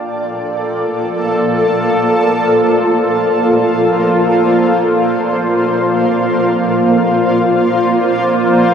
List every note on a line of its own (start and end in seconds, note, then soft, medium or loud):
0.00 8.74 A#3 loud
0.00 8.74 F4 medium
0.00 7.66 A4 medium
0.00 8.74 C5 medium
0.00 8.74 D5 medium
0.00 2.42 F5 medium
0.00 1.24 G5 medium
0.00 2.00 A5 medium
7.37 8.74 A#4 medium